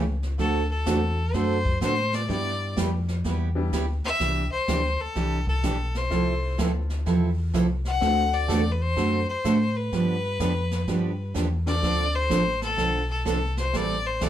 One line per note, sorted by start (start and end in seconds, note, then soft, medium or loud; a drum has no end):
0.00 0.37 C#2 loud
0.23 snare soft
0.38 0.85 D2 medium
0.38 0.61 D3 medium
0.38 0.61 A3 medium
0.38 0.61 C4 medium
0.38 0.61 F#4 medium
0.38 0.61 A4 medium
0.38 0.68 A4 medium
0.38 brush sweep soft
0.38 kick soft
0.38 snare soft
0.71 1.36 A4 medium
0.86 1.33 E2 medium
0.86 0.98 D3 medium
0.86 1.14 A3 medium
0.86 0.98 A3 medium
0.86 1.15 C4 medium
0.86 0.98 C4 medium
0.86 1.15 D4 medium
0.86 1.15 F#4 medium
0.86 0.99 F#4 medium
0.86 0.99 A4 medium
0.86 1.15 A4 medium
0.86 kick soft
0.86 snare medium
0.86 hi-hat pedal medium
1.34 1.80 F#2 medium
1.34 1.56 D3 medium
1.34 1.56 A3 medium
1.34 1.56 C4 medium
1.34 1.57 F#4 medium
1.34 1.57 A4 medium
1.34 1.82 C5 loud
1.34 brush sweep soft
1.34 kick soft
1.34 snare soft
1.65 kick medium
1.81 2.28 A2 medium
1.81 1.93 D3 medium
1.81 1.94 A3 medium
1.81 1.94 C4 medium
1.81 1.94 F#4 medium
1.81 1.94 A4 medium
1.81 2.16 C5 medium
1.81 kick soft
1.81 snare medium
1.81 hi-hat pedal medium
2.13 2.29 D5 loud
2.13 snare soft
2.29 2.76 G2 medium
2.29 3.02 G3 medium
2.29 2.52 G3 medium
2.29 3.02 B3 medium
2.29 2.52 B3 medium
2.29 3.02 D4 medium
2.29 2.52 E4 medium
2.29 3.03 E4 medium
2.29 2.52 G4 medium
2.29 3.03 G4 medium
2.29 2.74 D5 loud
2.29 brush sweep soft
2.29 kick soft
2.29 snare soft
2.77 3.23 F2 medium
2.77 2.89 G3 medium
2.77 2.89 B3 medium
2.77 2.89 E4 medium
2.77 2.89 G4 medium
2.77 kick soft
2.77 snare medium
2.77 hi-hat pedal medium
3.08 snare soft
3.24 3.71 E2 medium
3.24 3.47 G3 medium
3.24 3.48 B3 medium
3.24 3.48 E4 medium
3.24 3.48 G4 medium
3.24 brush sweep soft
3.24 kick soft
3.24 snare soft
3.55 3.70 G3 medium
3.55 3.70 B3 medium
3.55 3.71 D4 medium
3.55 3.71 E4 medium
3.55 3.71 G4 medium
3.73 4.02 D2 loud
3.73 3.84 G3 medium
3.73 3.85 B3 medium
3.73 3.85 E4 medium
3.73 3.85 G4 medium
3.73 kick soft
3.73 snare medium
3.73 hi-hat pedal medium
4.04 4.12 D2 soft
4.04 4.49 E5 loud
4.04 snare soft
4.20 4.49 C2 medium
4.20 4.42 C3 soft
4.20 4.43 E3 medium
4.20 4.43 D4 medium
4.20 4.43 G4 medium
4.20 brush sweep soft
4.20 kick soft
4.20 snare soft
4.52 4.60 C2 soft
4.52 5.02 C5 medium
4.68 4.97 D2 medium
4.68 4.80 C3 medium
4.68 4.80 E3 medium
4.68 4.80 D4 medium
4.68 4.80 G4 medium
4.68 kick soft
4.68 snare medium
4.68 hi-hat pedal medium
4.99 5.07 D2 soft
4.99 5.47 A4 loud
5.15 5.62 C2 medium
5.15 5.38 C3 medium
5.15 5.38 E3 medium
5.15 5.38 D4 medium
5.15 5.38 G4 medium
5.15 brush sweep soft
5.15 kick soft
5.15 snare soft
5.47 5.98 A4 medium
5.47 kick soft
5.63 6.09 B1 loud
5.63 5.75 C3 medium
5.63 5.75 E3 medium
5.63 5.75 D4 medium
5.63 5.76 G4 medium
5.63 kick soft
5.63 snare medium
5.63 hi-hat pedal medium
5.95 6.60 C5 medium
5.95 snare soft
6.10 6.57 C2 medium
6.10 6.33 C3 medium
6.10 6.33 F3 medium
6.10 7.43 A3 medium
6.10 7.44 C4 medium
6.10 6.33 C4 medium
6.10 7.44 E4 medium
6.10 6.33 E4 medium
6.10 7.44 F4 medium
6.10 6.34 A4 medium
6.10 7.44 A4 medium
6.10 brush sweep soft
6.10 kick soft
6.10 snare soft
6.58 7.05 D2 medium
6.58 6.70 C3 medium
6.58 6.70 F3 medium
6.58 6.70 C4 medium
6.58 6.70 E4 medium
6.58 6.71 A4 medium
6.58 kick soft
6.58 snare medium
6.58 hi-hat pedal medium
6.90 snare soft
7.06 7.52 E2 medium
7.06 7.28 C3 medium
7.06 7.28 F3 medium
7.06 7.29 C4 medium
7.06 7.29 E4 medium
7.06 7.29 A4 medium
7.06 brush sweep soft
7.06 kick soft
7.06 snare soft
7.53 8.00 C2 loud
7.53 7.65 C3 medium
7.53 7.66 F3 medium
7.53 7.66 C4 medium
7.53 7.66 E4 medium
7.53 7.66 A4 medium
7.53 kick soft
7.53 snare medium
7.53 hi-hat pedal medium
7.85 8.35 F#5 loud
7.85 snare soft
8.00 8.48 D2 medium
8.00 8.23 D3 medium
8.00 9.34 A3 medium
8.00 8.23 A3 medium
8.00 8.23 C4 medium
8.00 9.34 C4 medium
8.00 9.34 D4 medium
8.00 8.24 F#4 medium
8.00 9.35 F#4 medium
8.00 8.24 A4 medium
8.00 9.35 A4 medium
8.00 brush sweep medium
8.00 kick soft
8.00 snare soft
8.34 8.73 D5 medium
8.48 8.95 E2 loud
8.48 8.60 D3 medium
8.48 8.60 A3 medium
8.48 8.61 C4 medium
8.48 8.61 F#4 medium
8.48 8.61 A4 medium
8.48 kick soft
8.48 snare medium
8.48 hi-hat pedal medium
8.72 8.83 B4 medium
8.82 9.29 C5 loud
8.96 9.26 F#2 medium
8.96 9.19 D3 medium
8.96 9.19 A3 medium
8.96 9.19 C4 medium
8.96 9.19 F#4 medium
8.96 9.19 A4 medium
8.96 brush sweep soft
8.96 kick soft
8.96 snare soft
9.28 9.36 F#2 soft
9.28 9.78 C5 medium
9.44 9.91 A2 loud
9.44 9.56 D3 medium
9.44 9.56 A3 medium
9.44 9.57 C4 medium
9.44 9.57 F#4 medium
9.44 9.57 A4 medium
9.44 kick soft
9.44 snare medium
9.44 hi-hat pedal medium
9.77 11.35 B4 loud
9.92 10.38 G2 medium
9.92 10.15 D3 medium
9.92 10.15 F3 medium
9.92 10.15 B3 medium
9.92 10.15 D4 medium
9.92 10.15 G4 medium
9.92 brush sweep medium
9.92 kick soft
9.92 snare soft
10.40 10.86 F2 medium
10.40 10.52 D3 medium
10.40 10.52 F3 medium
10.40 10.52 B3 medium
10.40 10.52 D4 medium
10.40 10.52 G4 medium
10.40 kick soft
10.40 snare medium
10.40 hi-hat pedal medium
10.71 snare soft
10.87 11.34 G2 medium
10.87 11.10 D3 medium
10.87 11.10 F3 medium
10.87 11.10 B3 medium
10.87 11.10 D4 medium
10.87 11.10 G4 medium
10.87 brush sweep soft
10.87 kick soft
10.87 snare soft
11.34 11.81 E2 medium
11.34 11.47 D3 medium
11.34 11.47 F3 medium
11.34 11.47 B3 medium
11.34 11.47 D4 medium
11.34 11.47 G4 medium
11.34 kick soft
11.34 snare medium
11.34 hi-hat pedal soft
11.66 12.27 A3 medium
11.66 12.27 C4 medium
11.66 12.27 D4 medium
11.66 12.28 F4 medium
11.66 12.28 A4 medium
11.66 12.17 D5 loud
11.66 snare soft
11.83 12.29 D2 medium
11.83 12.05 D3 medium
11.83 12.05 F3 medium
11.83 12.05 C4 medium
11.83 12.05 D4 medium
11.83 12.06 A4 medium
11.83 brush sweep soft
11.83 kick soft
11.83 snare soft
12.15 12.62 C5 loud
12.29 12.77 A1 medium
12.29 12.42 D3 medium
12.29 12.42 F3 medium
12.29 12.42 C4 medium
12.29 12.42 D4 medium
12.29 12.42 A4 medium
12.29 kick soft
12.29 snare medium
12.29 hi-hat pedal medium
12.62 13.07 A4 loud
12.62 snare soft
12.77 13.24 B1 medium
12.77 13.00 D3 medium
12.77 13.00 F3 medium
12.77 13.00 C4 medium
12.77 13.00 D4 medium
12.77 13.00 A4 medium
12.77 brush sweep medium
12.77 kick soft
12.77 snare soft
13.11 13.25 A4 medium
13.25 13.72 C2 loud
13.25 13.37 D3 medium
13.25 13.37 F3 medium
13.25 13.37 C4 medium
13.25 13.38 D4 medium
13.25 13.38 A4 medium
13.25 13.56 A4 medium
13.25 kick soft
13.25 snare medium
13.25 hi-hat pedal medium
13.57 13.77 C5 medium
13.57 snare soft
13.73 14.20 A1 medium
13.73 13.96 E3 medium
13.73 13.96 G3 medium
13.73 13.96 C4 medium
13.73 13.96 E4 medium
13.73 13.96 A4 medium
13.73 14.08 D5 loud
13.73 brush sweep soft
13.73 kick soft
13.73 snare soft
14.06 14.24 C5 medium
14.21 14.29 B1 medium
14.21 14.29 E3 medium
14.21 14.29 G3 medium
14.21 14.29 C4 medium
14.21 14.29 E4 medium
14.21 14.29 A4 medium
14.21 14.29 D5 loud
14.21 kick soft
14.21 snare medium
14.21 hi-hat pedal medium